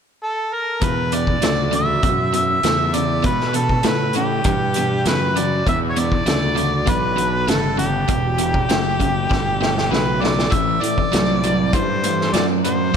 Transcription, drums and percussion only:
0.82 kick loud
0.82 closed hi-hat medium
1.12 closed hi-hat medium
1.27 kick medium
1.42 snare loud
1.42 closed hi-hat medium
1.73 closed hi-hat medium
2.03 kick loud
2.03 closed hi-hat medium
2.34 closed hi-hat medium
2.63 snare loud
2.63 closed hi-hat medium
2.94 closed hi-hat medium
3.24 kick loud
3.24 closed hi-hat medium
3.41 snare soft
3.54 closed hi-hat medium
3.69 kick medium
3.83 snare loud
3.83 closed hi-hat medium
4.13 closed hi-hat medium
4.44 kick loud
4.44 closed hi-hat medium
4.74 closed hi-hat medium
5.06 snare loud
5.06 closed hi-hat medium
5.37 closed hi-hat medium
5.67 kick medium
5.67 closed hi-hat medium
5.96 closed hi-hat medium
6.12 kick medium
6.26 snare loud
6.26 closed hi-hat medium
6.57 closed hi-hat medium
6.87 kick loud
6.87 closed hi-hat medium
7.18 closed hi-hat medium
7.48 snare loud
7.48 closed hi-hat medium
7.79 closed hi-hat medium
8.08 kick loud
8.08 closed hi-hat medium
8.38 closed hi-hat medium
8.54 kick medium
8.69 snare loud
8.69 closed hi-hat medium
9.00 kick medium
9.00 closed hi-hat medium
9.31 kick loud
9.31 snare medium
9.62 snare medium
9.78 snare medium
9.93 snare medium
10.24 snare medium
10.39 snare medium
10.52 kick loud
10.52 closed hi-hat medium
10.84 closed hi-hat medium
10.98 kick medium
11.13 snare loud
11.13 closed hi-hat medium
11.44 closed hi-hat medium
11.73 kick loud
11.73 closed hi-hat medium
12.04 closed hi-hat medium
12.21 snare soft
12.34 snare medium
12.34 closed hi-hat medium
12.65 closed hi-hat medium

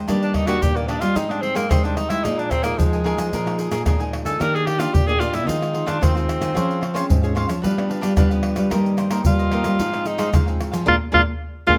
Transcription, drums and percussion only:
0.08 pandeiro medium
0.08 tamborim medium
0.08 shaker medium
0.08 surdo medium
0.22 pandeiro soft
0.22 shaker soft
0.34 pandeiro medium
0.34 tamborim medium
0.34 surdo medium
0.47 pandeiro medium
0.47 tamborim medium
0.47 shaker medium
0.62 pandeiro medium
0.62 shaker medium
0.62 surdo medium
0.76 pandeiro soft
0.76 shaker soft
0.89 pandeiro medium
0.89 tamborim medium
1.02 pandeiro medium
1.02 tamborim medium
1.02 shaker medium
1.16 pandeiro medium
1.16 shaker medium
1.16 surdo medium
1.31 pandeiro soft
1.31 tamborim medium
1.31 shaker soft
1.43 pandeiro medium
1.56 pandeiro medium
1.56 tamborim medium
1.56 shaker medium
1.71 pandeiro medium
1.71 tamborim medium
1.71 shaker medium
1.71 surdo loud
1.85 pandeiro soft
1.85 shaker soft
1.97 pandeiro medium
1.97 tamborim medium
1.97 shaker medium
2.10 pandeiro medium
2.10 tamborim medium
2.10 shaker medium
2.25 pandeiro medium
2.25 tamborim medium
2.25 shaker medium
2.25 surdo medium
2.39 pandeiro soft
2.39 shaker soft
2.51 pandeiro medium
2.51 tamborim medium
2.51 shaker medium
2.51 surdo medium
2.64 pandeiro medium
2.64 tamborim medium
2.64 shaker medium
2.80 pandeiro medium
2.80 shaker medium
2.80 surdo medium
2.93 pandeiro soft
2.93 shaker soft
3.06 pandeiro soft
3.06 tamborim medium
3.18 pandeiro medium
3.18 tamborim medium
3.18 shaker medium
3.33 pandeiro medium
3.33 shaker medium
3.33 surdo medium
3.47 pandeiro soft
3.47 tamborim medium
3.47 shaker soft
3.59 pandeiro medium
3.59 shaker medium
3.72 pandeiro medium
3.72 tamborim medium
3.72 shaker medium
3.86 pandeiro medium
3.86 tamborim medium
3.86 shaker medium
3.86 surdo loud
4.00 pandeiro soft
4.00 shaker soft
4.13 pandeiro medium
4.13 tamborim medium
4.26 pandeiro medium
4.26 tamborim medium
4.26 shaker medium
4.41 pandeiro medium
4.41 tamborim medium
4.41 shaker medium
4.41 surdo medium
4.56 pandeiro soft
4.56 shaker soft
4.67 pandeiro medium
4.67 tamborim medium
4.80 pandeiro medium
4.80 tamborim medium
4.80 shaker medium
4.95 pandeiro medium
4.95 shaker medium
4.95 surdo loud
5.09 pandeiro soft
5.09 shaker soft
5.21 pandeiro soft
5.21 tamborim medium
5.21 shaker medium
5.34 pandeiro medium
5.34 tamborim medium
5.34 shaker medium
5.49 pandeiro medium
5.49 shaker medium
5.49 surdo medium
5.62 pandeiro soft
5.62 tamborim medium
5.62 shaker soft
5.74 pandeiro medium
5.88 pandeiro medium
5.88 tamborim medium
5.88 shaker medium
6.03 pandeiro medium
6.03 tamborim medium
6.03 shaker medium
6.03 surdo loud
6.17 pandeiro soft
6.17 shaker soft
6.29 pandeiro medium
6.29 tamborim medium
6.29 shaker medium
6.42 pandeiro medium
6.42 tamborim medium
6.42 shaker medium
6.57 pandeiro medium
6.57 tamborim medium
6.57 shaker medium
6.57 surdo medium
6.71 pandeiro soft
6.71 shaker soft
6.83 pandeiro medium
6.83 tamborim medium
6.96 pandeiro medium
6.96 tamborim medium
6.96 shaker medium
7.10 pandeiro medium
7.10 shaker medium
7.10 surdo loud
7.24 pandeiro soft
7.24 shaker soft
7.37 pandeiro soft
7.37 tamborim medium
7.49 pandeiro medium
7.49 tamborim medium
7.49 shaker medium
7.64 pandeiro medium
7.64 shaker medium
7.64 surdo medium
7.78 pandeiro soft
7.78 tamborim medium
7.78 shaker soft
7.91 pandeiro medium
8.03 pandeiro medium
8.03 tamborim medium
8.03 shaker medium
8.17 pandeiro medium
8.17 tamborim medium
8.17 shaker medium
8.17 surdo loud
8.31 pandeiro soft
8.31 shaker soft
8.43 pandeiro medium
8.43 tamborim medium
8.56 pandeiro medium
8.56 tamborim medium
8.56 shaker medium
8.71 pandeiro medium
8.71 tamborim medium
8.71 shaker medium
8.71 surdo medium
8.86 pandeiro soft
8.86 shaker soft
8.98 pandeiro medium
8.98 tamborim medium
8.98 shaker medium
9.11 pandeiro medium
9.11 tamborim medium
9.11 shaker medium
9.25 pandeiro medium
9.25 shaker medium
9.25 surdo loud
9.39 pandeiro soft
9.39 shaker soft
9.51 pandeiro medium
9.51 tamborim medium
9.64 pandeiro medium
9.64 tamborim medium
9.64 shaker medium
9.79 pandeiro medium
9.79 shaker medium
9.79 surdo medium
9.93 pandeiro soft
9.93 tamborim medium
9.93 shaker soft
10.06 pandeiro medium
10.06 shaker medium
10.19 pandeiro medium
10.19 tamborim medium
10.19 shaker medium
10.34 pandeiro medium
10.34 tamborim medium
10.34 shaker medium
10.34 surdo loud
10.48 pandeiro soft
10.48 shaker soft
10.61 pandeiro medium
10.61 tamborim medium
10.61 shaker medium
10.73 pandeiro medium
10.73 tamborim medium
10.73 shaker medium
10.88 surdo medium
11.14 surdo loud
11.69 surdo medium

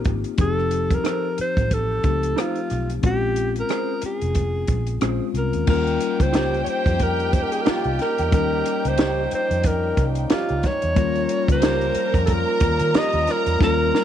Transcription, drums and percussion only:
0.04 kick medium
0.04 cross-stick soft
0.04 closed hi-hat soft
0.24 closed hi-hat soft
0.38 kick loud
0.38 closed hi-hat medium
0.58 cross-stick soft
0.71 closed hi-hat medium
0.90 kick medium
0.90 closed hi-hat medium
1.05 cross-stick medium
1.05 closed hi-hat medium
1.38 closed hi-hat medium
1.57 kick medium
1.57 closed hi-hat soft
1.71 kick medium
1.71 closed hi-hat medium
2.04 kick medium
2.04 closed hi-hat medium
2.23 closed hi-hat soft
2.38 cross-stick medium
2.38 closed hi-hat medium
2.55 closed hi-hat soft
2.70 cross-stick soft
2.70 closed hi-hat medium
2.90 closed hi-hat soft
3.03 kick loud
3.03 closed hi-hat medium
3.36 closed hi-hat medium
3.56 closed hi-hat medium
3.69 cross-stick medium
3.69 closed hi-hat medium
4.02 closed hi-hat medium
4.21 closed hi-hat soft
4.35 kick medium
4.35 closed hi-hat medium
4.67 kick medium
4.67 closed hi-hat medium
4.87 closed hi-hat soft
5.01 cross-stick medium
5.01 closed hi-hat medium
5.35 cross-stick soft
5.35 closed hi-hat soft
5.53 closed hi-hat soft
5.67 kick loud
5.67 crash medium
5.87 closed hi-hat soft
6.01 closed hi-hat medium
6.20 kick medium
6.20 closed hi-hat medium
6.34 snare medium
6.34 closed hi-hat medium
6.54 closed hi-hat soft
6.66 closed hi-hat medium
6.86 kick medium
6.86 closed hi-hat soft
6.99 kick medium
6.99 closed hi-hat medium
7.20 closed hi-hat soft
7.33 kick medium
7.33 closed hi-hat medium
7.52 closed hi-hat medium
7.66 snare loud
7.66 closed hi-hat medium
7.84 closed hi-hat soft
7.99 snare soft
7.99 closed hi-hat soft
8.18 closed hi-hat medium
8.32 kick loud
8.32 closed hi-hat medium
8.66 closed hi-hat medium
8.85 closed hi-hat medium
8.98 snare loud
8.98 closed hi-hat medium
9.31 closed hi-hat medium
9.51 closed hi-hat soft
9.63 kick medium
9.63 closed hi-hat medium
9.97 kick medium
9.97 closed hi-hat medium
10.15 closed hi-hat medium
10.30 snare loud
10.30 closed hi-hat medium
10.49 closed hi-hat soft
10.63 kick medium
10.63 snare soft
10.63 closed hi-hat medium
10.82 closed hi-hat medium
10.96 kick loud
10.96 closed hi-hat medium
11.16 closed hi-hat soft
11.29 closed hi-hat medium
11.48 kick medium
11.48 closed hi-hat medium
11.62 snare medium
11.62 closed hi-hat medium
11.81 closed hi-hat soft
11.94 closed hi-hat medium
12.14 kick medium
12.14 closed hi-hat soft
12.27 kick medium
12.27 closed hi-hat medium
12.60 kick medium
12.60 closed hi-hat medium
12.79 closed hi-hat medium
12.94 snare loud
12.94 closed hi-hat medium
13.13 closed hi-hat soft
13.27 snare soft
13.27 closed hi-hat medium
13.46 closed hi-hat medium
13.61 kick loud
13.61 snare medium
13.95 snare medium

